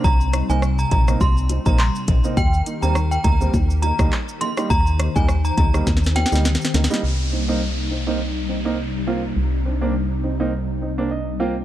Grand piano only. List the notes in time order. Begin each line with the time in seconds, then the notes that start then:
0.33 C4 D#4
0.50 A#3 C4 D#4
0.91 C4 D#4
1.08 A#3 C4 D#4
1.50 C4 D#4
1.66 A#3 C4 D#4
2.08 C4 D#4
2.24 A#3 C4 D#4
2.66 A#3 D#4
2.82 G3 A#3 C4
3.24 A#3 D#4
3.41 G3 A#3 C4
3.83 A#3 D#4
3.99 G3 A#3 D#4
4.41 A#3 D#4
4.57 G3 A#3 D#4
4.99 A#3 D#4
5.16 G3 A#3 D#4
5.58 A#3 D#4
5.74 G3 A#3 D#4
6.16 A#3 C4
6.32 G3 A#3 D#4
6.74 A#3 D#4
6.90 G3 A#3 D#4
7.32 C4 D#4
7.48 A#3 C4 D#4
7.91 C4 D#4
8.07 A#3 C4 D#4
8.49 C4 D#4
8.65 A#3 C4 D#4
9.07 A#3 C4 F4
9.65 C4 D4
9.81 A#3 C4 D4
10.23 C4 D#4
10.40 A#3 C4 D#4
10.82 C4 D#4
10.98 A#3 C4 D4
11.11 D#5
11.40 A#3 C4 F4 G5